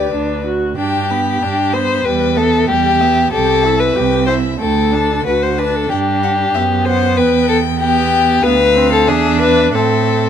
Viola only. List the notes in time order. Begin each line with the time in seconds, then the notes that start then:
Already playing: G4
0.13 D4
0.46 F#4
0.78 D4
1.10 B3
1.43 D4
1.73 B3
2.06 G3
2.37 B3
2.69 G3
3.00 B3
3.32 G4
3.65 E4
3.95 G4
4.27 E4
4.58 A3
4.92 D4
5.25 F#4
5.58 D4
5.91 D4
6.56 B3
7.82 B3
8.45 B3
8.75 C4
9.08 D4
9.75 C4